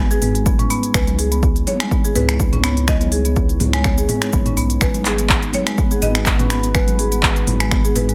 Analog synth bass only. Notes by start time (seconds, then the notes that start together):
Already playing: G#1
0.22 G#1
0.94 C#2
2.15 C#2
3.60 C#2
4.33 G#1
4.57 B1
4.81 G#1
6.02 G#1
7.47 G#1
7.96 G#1